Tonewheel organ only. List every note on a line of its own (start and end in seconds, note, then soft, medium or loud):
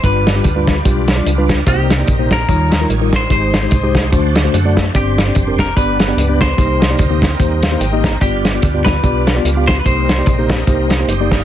0.05 1.65 G3 medium
0.05 1.65 D4 medium
0.05 1.64 F4 medium
0.05 1.64 B4 medium
1.67 2.47 G3 medium
1.67 2.47 C4 medium
1.67 2.47 D#4 medium
1.67 2.47 A#4 medium
2.48 2.55 F#3 medium
2.48 3.29 D#4 medium
2.48 3.29 F4 medium
2.48 3.29 C#5 medium
2.53 3.31 G3 medium
3.31 4.11 G#3 medium
3.31 4.11 D#4 medium
3.31 4.11 G4 medium
3.31 3.36 A#4 medium
3.36 4.11 C5 medium
4.12 4.92 A3 medium
4.12 4.93 D4 medium
4.12 4.93 F#4 medium
4.12 4.92 C5 medium
4.54 4.76 F#5 medium
4.79 4.94 E5 medium
4.96 5.75 G3 medium
4.96 5.75 C4 medium
4.96 5.75 D4 medium
4.96 5.01 B4 medium
5.01 5.78 C5 medium
5.77 6.57 G3 medium
5.77 6.57 B3 medium
5.77 6.57 D4 medium
5.77 5.82 G#4 medium
5.82 6.59 B4 medium
6.59 8.19 G3 medium
6.59 8.19 C4 medium
6.59 8.19 D#4 medium
6.59 8.19 A#4 medium
7.64 7.80 F5 medium
7.79 8.18 G5 medium
8.21 9.82 G3 medium
8.21 9.81 D4 medium
8.21 9.82 F4 medium
8.21 9.81 B4 medium
9.85 11.44 G3 medium
9.85 11.44 C4 medium
9.85 11.44 D#4 medium
9.85 11.06 A#4 medium
11.09 11.31 G4 soft
11.09 11.31 C5 medium
11.32 11.44 A#4 medium
11.32 11.44 D#5 medium